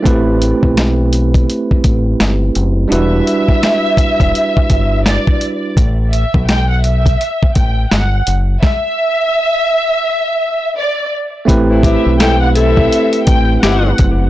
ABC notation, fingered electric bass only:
X:1
M:4/4
L:1/16
Q:"Swing 16ths" 1/4=84
K:Ador
V:1 name="Fingered electric bass" clef=bass
A,,,3 B,,,4- B,,, z2 A,,,2 G,,,2 F,,,2 | E,,,2 z4 z E,,, z2 G,,,3 z3 | A,,,3 B,,,4- B,,, z2 A,,,2 G,,,2 F,,,2 | z16 |
A,,,3 B,,,4- B,,, z2 A,,,2 G,,,2 F,,,2 |]